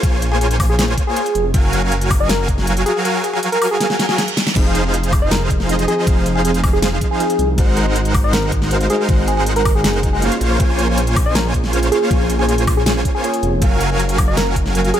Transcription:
0.03 A#1 A#3 F4 C#5 G#5, kick, closed hi-hat
0.22 closed hi-hat
0.32 A#3 F4 G#4 C5 C#5 G#5
0.41 G#4, closed hi-hat
0.51 closed hi-hat
0.60 kick, open hi-hat, high woodblock
0.70 G#4
0.79 G#4, snare, closed hi-hat
0.98 kick, closed hi-hat
1.07 G#4
1.16 G#4, closed hi-hat
1.26 closed hi-hat
1.35 F1, closed hi-hat
1.54 F#1 F#3 F#4 A#4 F5 G#5, kick, closed hi-hat
1.73 closed hi-hat
1.82 F#3 F#4 A#4 F5 G#5
1.92 closed hi-hat
2.01 closed hi-hat
2.11 kick, open hi-hat, high woodblock
2.20 D#5
2.29 A#4, snare, closed hi-hat
2.48 kick, closed hi-hat
2.58 snare
2.67 F#3 F#4 A#4 F5 G#5, closed hi-hat
2.77 closed hi-hat
2.86 G#4, closed hi-hat
3.05 F#3 F#4 A#4 F5 G#5, closed hi-hat
3.24 G#4, closed hi-hat
3.33 F#3 F#4 G#4 A#4 F5 G#5
3.43 closed hi-hat
3.52 A#4, closed hi-hat
3.62 open hi-hat, high woodblock
3.71 G#4
3.80 snare, closed hi-hat, reverse cymbal
3.90 snare
3.99 snare, closed hi-hat
4.09 G#4, snare
4.18 G#4, snare, closed hi-hat
4.28 closed hi-hat
4.37 snare, closed hi-hat
4.47 snare
4.54 F1 F3 C4 D#4 G#4 C5 F5, kick, closed hi-hat, crash
4.75 closed hi-hat
4.84 F3 D#4 G#4 C5 F5
4.94 closed hi-hat
5.03 closed hi-hat
5.13 kick, open hi-hat, high woodblock
5.22 D#5
5.31 A#4, snare, closed hi-hat
5.50 kick, closed hi-hat
5.60 snare
5.68 F3 C4 D#4 G#4 C5 D#5, closed hi-hat
5.79 closed hi-hat
5.88 G#4, closed hi-hat
6.05 F1 F3 C4 D#4, kick, closed hi-hat
6.09 G#4
6.26 closed hi-hat
6.35 F3 D#4 G#4 C5 F5
6.45 G#4, closed hi-hat
6.54 closed hi-hat
6.64 kick, open hi-hat, high woodblock
6.73 G#4
6.82 G#4, snare, closed hi-hat
7.01 kick, closed hi-hat
7.11 G#4
7.19 F3 C4 D#4 G#4, closed hi-hat
7.30 closed hi-hat
7.39 C2, closed hi-hat
7.56 G#1 G#3 D#4 F#4 A#4 C5 F#5, kick, closed hi-hat
7.77 closed hi-hat
7.86 G#3 D#4 A#4 C5 F#5
7.96 closed hi-hat
8.05 closed hi-hat
8.14 kick, open hi-hat, high woodblock
8.24 D#5
8.33 A#4, snare, closed hi-hat
8.52 kick, closed hi-hat
8.62 snare
8.70 G#3 D#4 F#4 A#4 C5 F5, closed hi-hat
8.81 closed hi-hat
8.90 G#4, closed hi-hat
9.07 G#1 G#3 D#4 F#4 C5, kick, closed hi-hat
9.28 G#4, closed hi-hat
9.37 G#3 D#4 G#4 A#4 C5 F#5
9.46 closed hi-hat
9.56 A#4, closed hi-hat
9.65 kick, open hi-hat, high woodblock
9.75 G#4
9.84 F#1, snare, closed hi-hat
10.03 kick, closed hi-hat
10.13 G#4
10.21 A#3 C#4 F4 G#4 C5 C#5 F5, closed hi-hat
10.32 closed hi-hat
10.41 A#1, closed hi-hat
10.58 A#1 A#3 C#4 F4 G#4 C5, kick, closed hi-hat
10.79 closed hi-hat
10.88 A#3 F4 C5 C#5 G#5
10.98 closed hi-hat
11.07 closed hi-hat
11.16 kick, open hi-hat, high woodblock
11.26 D#5
11.35 A#4, snare, closed hi-hat
11.54 kick, closed hi-hat
11.64 snare
11.72 A#3 C#4 F4 G#4 C5 C#5 F5, closed hi-hat
11.83 closed hi-hat
11.92 G#4, closed hi-hat
12.09 A#1 A#3 C#4 F4 G#4 C5 C#5 G#5, kick, closed hi-hat
12.30 closed hi-hat
12.39 A#3 F4 G#4 C5 C#5 G#5
12.49 G#4, closed hi-hat
12.58 closed hi-hat
12.67 kick, open hi-hat, high woodblock
12.77 G#4
12.86 G#4, snare, closed hi-hat
13.05 kick, closed hi-hat
13.15 G#4
13.23 A#3 F4 G#4 C#5, closed hi-hat
13.34 closed hi-hat
13.43 F1, closed hi-hat
13.60 F#1 F#3 C#4 F#4 A#4 F5 G#5, kick, closed hi-hat
13.80 closed hi-hat
13.90 F#3 F#4 A#4 F5 G#5
13.99 closed hi-hat
14.09 closed hi-hat
14.18 kick, open hi-hat, high woodblock
14.28 D#5
14.37 A#4, snare, closed hi-hat
14.56 kick, closed hi-hat
14.66 snare
14.74 F#3 C#4 F#4 A#4 F5 G#5, closed hi-hat
14.85 closed hi-hat
14.94 G#4, closed hi-hat

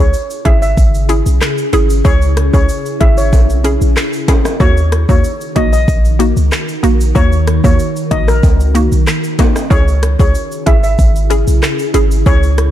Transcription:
Already playing: C#3 C#4 E4 G#4
0.00 C#2 C#4 E4 G#4 C#5
0.13 shaker
0.30 shaker
0.45 G#1 C#4 E4 G#4 E5, kick, closed hi-hat, shaker
0.62 E5, shaker
0.77 G#1, kick, shaker
0.94 shaker
1.09 C#4 E4 G#4, closed hi-hat, shaker
1.26 B1, shaker
1.41 cross-stick, clap, shaker
1.58 shaker
1.73 G#1 C#4 E4 G#4, closed hi-hat, shaker
1.90 shaker
2.05 C#2 C#4 E4 G#4 C#5, kick, shaker
2.22 shaker
2.37 cross-stick, closed hi-hat, shaker
2.53 C#2 C#4 E4 G#4 C#5, kick, shaker
2.69 shaker
2.86 shaker
3.00 G#1 C#4 E4 G#4 E5, kick, closed hi-hat, shaker
3.18 C#5, shaker
3.33 B1, kick, high timbale, shaker
3.50 shaker
3.64 C#4 E4 G#4, closed hi-hat, shaker
3.81 A#1, shaker
3.96 cross-stick, clap, shaker
4.13 shaker
4.28 C#4 E4 G#4, kick, closed hi-hat, high timbale, shaker
4.45 cross-stick, high timbale, shaker
4.60 D#2 D#3 A#3 D#4 F#4 A#4 C#5, kick, shaker
4.77 shaker
4.92 cross-stick, closed hi-hat, shaker
5.09 D#2 A#3 D#4 F#4 C#5, kick, shaker
5.24 shaker
5.41 shaker
5.56 A#1 A#3 D#4 F#4 D#5, kick, closed hi-hat, shaker
5.73 D#5, shaker
5.88 A#1, kick, shaker
6.05 shaker
6.19 A#3 D#4 F#4, closed hi-hat, shaker
6.37 C#2, shaker
6.52 cross-stick, clap, shaker
6.68 shaker
6.83 A#1 A#3 D#4 F#4, closed hi-hat, shaker
7.00 shaker
7.15 D#2 A#3 D#4 F#4 C#5, kick, shaker
7.32 shaker
7.47 cross-stick, closed hi-hat, shaker
7.64 D#2 A#3 D#4 F#4 C#5, kick, shaker
7.79 shaker
7.96 shaker
8.11 A#1 A#3 D#4 F#4 D#5, kick, closed hi-hat, shaker
8.28 A#4, cross-stick, shaker
8.43 C#2, kick, high timbale, shaker
8.60 shaker
8.75 A#3 D#4 F#4, closed hi-hat, shaker
8.92 B1, shaker
9.07 cross-stick, clap, shaker
9.24 shaker
9.39 A#3 D#4 F#4, kick, closed hi-hat, high timbale, shaker
9.56 cross-stick, high timbale, shaker
9.70 C#2 C#3 C#4 E4 G#4 C#5, kick, shaker
9.88 shaker
10.03 cross-stick, closed hi-hat, shaker
10.19 C#2 C#4 E4 G#4 C#5, kick, shaker
10.35 shaker
10.52 shaker
10.66 G#1 C#4 E4 G#4 E5, kick, closed hi-hat, shaker
10.84 E5, shaker
10.99 G#1, kick, shaker
11.16 shaker
11.30 C#4 E4 G#4, closed hi-hat, shaker
11.47 B1, shaker
11.63 cross-stick, clap, shaker
11.79 shaker
11.94 G#1 C#4 E4 G#4, closed hi-hat, shaker
12.11 shaker
12.26 C#2 C#4 E4 G#4 C#5, kick, shaker
12.43 shaker
12.58 cross-stick, closed hi-hat, shaker

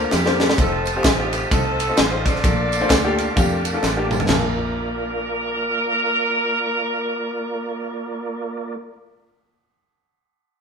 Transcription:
Already playing: A4 A#4 C5 F5 A5 D6
0.12 F2 D4 G4 F5, snare, clap, tambourine
0.25 A#3 D4 F4 A4 C5, snare
0.40 D5, snare, tambourine
0.49 snare
0.57 F1 A3 C4 D#4 F4 A4 C5 F5 A5 D#6, kick, ride bell, tambourine
0.85 ride bell, tambourine
0.95 A3 C4 D#4 F4 G4
1.04 A1 C4 D#4 G4, kick, snare, clap, ride bell, tambourine
1.19 A3 C4 D#4 F4 G4
1.33 clap, ride bell, tambourine
1.51 C2 A3 C4 D#4 F4 A4, kick, ride bell, tambourine
1.80 ride bell, tambourine
1.88 A3 C4 D#4 F4 A4
1.97 A1 C5, snare, clap, ride bell, tambourine
2.11 A3 C4 D#4 F4 C5
2.26 F4 A4 D5, kick, snare, ride bell, tambourine
2.36 snare
2.43 A#1 A#2 A3 A#3 D4 F4 A4 A5 D6, kick, ride bell, tambourine
2.72 ride bell, tambourine
2.80 A3 A#3 D4 F4 C5
2.90 D2, kick, snare, clap, ride bell, tambourine
3.03 A3 A#3 D4 F4 G4
3.18 ride bell, tambourine
3.35 F2 A3 A#3 D4 F4 G4, kick, ride bell, tambourine
3.65 ride bell, tambourine
3.73 A3 A#3 D4 F4 A4
3.83 A1, snare, clap, tambourine
3.95 A3 A#3 D4 F4 G4
4.11 mid tom, tambourine
4.20 floor tom
4.26 A#1 A#3 D4 F4 A#4 D5, snare, clap, floor tom, crash
4.30 F4 A5

